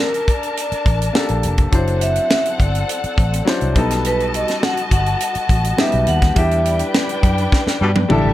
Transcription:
Already playing: D4 G4 A4 A#4 A5
0.00 A#4
0.14 closed hi-hat
0.28 D5, kick, closed hi-hat
0.43 closed hi-hat
0.57 D5, closed hi-hat
0.72 muted fingered electric bass stroke, closed hi-hat
0.86 A1, kick, closed hi-hat
1.02 closed hi-hat
1.13 A#3 D4 G4 A4, snare
1.29 A#1, closed hi-hat
1.43 F1, closed hi-hat
1.58 kick, closed hi-hat
1.71 F#1 F#3 C4 D4 E4 A4 C5 F#5, kick, closed hi-hat
1.87 closed hi-hat
2.01 E5, closed hi-hat
2.15 closed hi-hat
2.30 E5, snare
2.45 closed hi-hat
2.58 G1 D5, kick, closed hi-hat
2.75 closed hi-hat
2.89 closed hi-hat
3.04 muted fingered electric bass stroke, closed hi-hat
3.18 A1, kick, closed hi-hat
3.33 closed hi-hat
3.45 F#3 D4 E4 C5, snare
3.61 C2, closed hi-hat
3.74 B1 G3 B3 D#4 F#4 A4 D#5 A5, kick, closed hi-hat
3.90 snare, closed hi-hat
4.05 B4, closed hi-hat
4.20 closed hi-hat
4.34 D#5, closed hi-hat
4.48 snare, closed hi-hat
4.63 F#5, snare
4.77 closed hi-hat
4.91 G1 F#5, kick, closed hi-hat
5.06 closed hi-hat
5.20 closed hi-hat
5.35 muted fingered electric bass stroke, closed hi-hat
5.49 A1, kick, closed hi-hat
5.64 closed hi-hat
5.77 G3 B3 D#4 G4 E5, snare
5.92 B1, closed hi-hat
6.07 D#2 F#5, closed hi-hat
6.22 kick, snare, closed hi-hat
6.35 E2 G3 D4 E4 G4 B4 E5 G5, kick, closed hi-hat
6.51 closed hi-hat
6.61 E5
6.65 D5, closed hi-hat
6.79 closed hi-hat
6.94 snare
7.09 closed hi-hat
7.23 F#2, kick, closed hi-hat
7.38 closed hi-hat
7.52 kick, snare
7.67 muted fingered electric bass stroke, snare
7.81 G2 B2 G3 D4
7.96 high tom
8.08 A1 G3 A3 D4 E4 G4 A4 E5, mid tom
8.25 A1

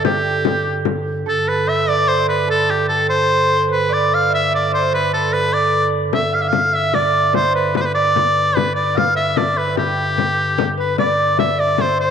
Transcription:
Already playing: G2 D3 A4 B4 D5 E5
0.05 G4, frame drum
0.45 frame drum
0.66 frame drum
0.85 frame drum
1.26 G2 D3 A4
1.47 B4
1.67 E5
1.88 D5
2.08 C5
2.29 B4
2.48 A4
2.70 G4
2.89 A4
3.10 C5
3.49 C5
3.68 B4
3.89 D5
3.93 D5
4.14 F5
4.30 E5
4.35 E5
4.52 D5
4.66 D5
4.72 C5
4.93 B4
5.13 A4
5.33 B4
5.53 D5
6.13 G2 D3 E5, frame drum
6.33 F5, frame drum
6.41 E5
6.47 F5
6.53 frame drum
6.73 E5
6.93 D5, frame drum
7.33 C5, frame drum
7.53 B4, frame drum
7.75 B4, frame drum
7.81 C5
7.86 B4
7.95 D5
8.16 frame drum
8.55 B4, frame drum
8.73 D5, frame drum
8.95 F5, frame drum
9.15 E5
9.37 D5, frame drum
9.57 B4
9.68 B4
9.75 G4, frame drum
10.18 frame drum
10.58 frame drum
10.77 B4
10.98 G2 D3 D5, frame drum
11.36 E5, frame drum
11.58 D5
11.78 C5, frame drum
11.98 C5

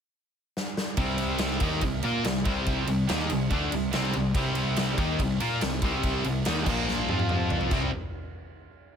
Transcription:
0.57 snare
0.77 snare
0.97 C2 C3 G3 C4, kick, ride
1.18 ride
1.38 snare, ride
1.60 D#2 D#3 A#3 D#4, kick, ride
1.81 C2 C3 G3, kick, ride
2.03 A#2 A#3 F4 A#4, ride
2.24 C2 C3 G3, snare, ride
2.45 C2 C3 G3 C4, kick, ride
2.66 kick, ride
2.87 C2 C3 G3, ride
3.09 D#2 D#3 A#3 D#4, snare, ride
3.30 C2 C3 G3, ride
3.50 D2 D3 A3 D4, kick, ride
3.72 C2 C3 G3, ride
3.93 C2 C3 G3 C4, snare, ride
4.13 C2 C3 G3, ride
4.35 C2 C3 G3 C4, kick, ride
4.55 ride
4.76 snare, ride
4.98 D#2 D#3 A#3 D#4, kick, ride
5.19 C2 C3 G3, kick, ride
5.40 A#2 A#3 F4 A#4, ride
5.61 C2 C3 G3, snare, ride
5.82 C2 C3 G3 C4, kick, ride
6.03 kick, ride
6.24 C2 C3 G3, ride
6.45 D#2 D#3 A#3 D#4, snare, ride
6.66 A#1 A#2 F3 A#3, kick, crash
6.88 snare
7.09 F2 F3 C4 F4, high tom
7.19 high tom
7.29 mid tom
7.50 floor tom
7.61 floor tom
7.71 C2 C3 G3 C4 E4, kick, crash

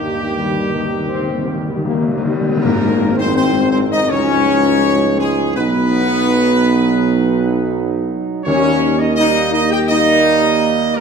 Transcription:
Already playing: D#2 G2 A#3 D#4 G4
0.07 D#3
0.14 D#3
0.23 D#3
0.30 D#3
0.36 D#3 G3
0.45 D#3
0.52 D#3
0.60 D#3
0.68 D#3
0.72 D#3
0.83 D#3
0.91 D#3
0.99 D#3
1.07 D#3 C4
1.14 D#3
1.22 D#3
1.30 D#3
1.38 D#3
1.46 D#3 A#3
1.54 D#3
1.61 D#3
1.66 D#3 G3
1.77 D#3
1.85 D#3 A#3
1.93 D#3
2.02 D#3
2.09 D#3
2.18 D#3
2.24 D#3 G3
2.33 D#3
2.41 D#3
2.49 D#3
2.57 D#3
2.62 G#1 G#2 D#3 A#3 C4 A#4, tam-tam
3.17 C4 C5
3.35 D#3 C4 C5
3.71 C4 C5
3.91 D#4 D#5
4.09 C#2 F3 C#4 D#4 C#5
5.19 G#3 G#4
5.55 B1 F#3 B3 D#4 B4
8.44 D#2 D#3 G3 A#3 C#4 C#5
8.99 D#4 D#5
9.16 G3 A#3 D#4 D#5
9.53 D#4 D#5
9.71 G4 G5
9.88 G3 A#3 D#4 D#5
10.96 A#4

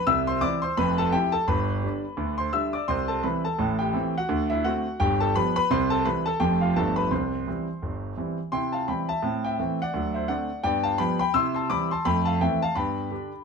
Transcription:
0.07 C2 C3 E5 E6
0.27 C5 C6
0.41 E3 C4 E4 D5 D6
0.62 C5 C6
0.77 F1 F2 B4 B5
0.98 A4 A5
1.12 F3 C4 E4 G4 G5
1.32 A4 A5
1.48 G1 G2 B4 B5
1.84 D3 G3 D4
2.17 D2 D3
2.38 C5 C6
2.53 D3 G3 D4 E5 E6
2.73 D5 D6
2.88 C2 C3 C5 C6
3.08 A4 A5
3.23 E3 G3 C4 B4 B5
3.45 A4 A5
3.59 A1 A2
3.79 G4 G5
3.94 E3 A3 C4
4.18 F#4 F#5
4.29 D2 D3
4.50 E4 E5
4.64 D3 A3 C4 F#4 F#5
5.00 G1 G2 G4 G5
5.20 A4 A5
5.35 F3 G3 B3 B4 B5
5.56 B4 B5
5.70 C2 C3 C5 C6
5.90 A4 A5
6.05 E3 G3 C4 B4 B5
6.26 A4 A5
6.40 F1 F2 F3 A3 C4 G4 G5
6.61 F4 F5
6.76 G1 G2 F3 A3 B3 A4 A5
6.96 B4 B5
7.11 C2 C3 C5 C6
7.47 E3 G3 C4
7.82 G1 G2
8.17 E3 G3 C4
8.52 C3 E4 G5 C6
8.72 F5 A5
8.88 E3 G3 C4 G5 B5
9.09 E5 A5
9.23 A2 C4
9.44 E5 G5
9.59 E3 A3 C4
9.82 D5 F#5
9.94 D2 F#3
10.14 C5 E5
10.28 D3 A3 C4 D5 F#5
10.64 G2 B3 D5 G5
10.83 F5 A5
10.98 F3 G3 B3 G5 B5
11.19 G5 B5
11.34 C3 E4 C6 E6
11.54 A5 C6
11.70 E3 G3 C4 B5 D6
11.91 A5 C6
12.05 F2 A3 G5 B5
12.25 F5 A5
12.41 E3 A3 C4 E5 G5
12.62 F5 A5
12.75 G2 B3 G5 B5
13.11 D3 D4 G4

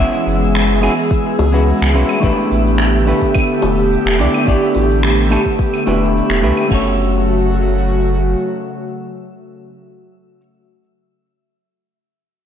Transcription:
Already playing: E3 G#3 B3 C#4 E5 E6
0.00 E4 F#4 G#4 E5, shaker
0.14 shaker
0.26 F#1, shaker
0.43 shaker
0.55 finger snap, shaker
0.70 shaker
0.81 G#3 C#4 E4 F#4 G#4, claves, shaker
0.97 shaker
1.11 kick, shaker
1.39 C#2, high bongo, shaker
1.52 G#3 C#4 E4 F#4 B4, shaker
1.67 shaker
1.81 C#2, finger snap, shaker
1.94 B1 G#3 C#4 E4 F#4 B4, shaker
2.09 claves, shaker
2.20 A1 D3 A3 B3 D4 E4 G4, kick, shaker
2.24 B4
2.39 shaker
2.51 A1, shaker
2.66 shaker
2.78 finger snap, shaker
3.05 A3 D4 E4 G4 B4, shaker
3.22 kick, shaker
3.35 kick, claves, shaker
3.62 E1, high bongo, shaker
3.79 shaker
3.92 shaker
4.05 E1, finger snap, shaker
4.18 D2 A3 D4 E4 G4 D5, shaker
4.34 claves, shaker
4.44 A1 A3 D4 E4 G4, kick, shaker
4.49 D5
4.63 shaker
4.75 A1, high bongo, shaker
4.91 shaker
5.03 finger snap, shaker
5.19 shaker
5.30 A3 D4 E4 G4 A4, claves, shaker
5.46 kick, shaker
5.59 kick, shaker
5.74 claves, shaker
5.86 E1 A3 D4 E4 G4 B4, high bongo, shaker
6.03 shaker
6.16 shaker
6.29 E1, finger snap, shaker
6.42 D2 A3 D4 E4 G4 B4, shaker
6.57 claves, shaker
6.68 F#1 C#3 F#3 A3 C#4 F#4, kick, crash
6.73 A4 C#5

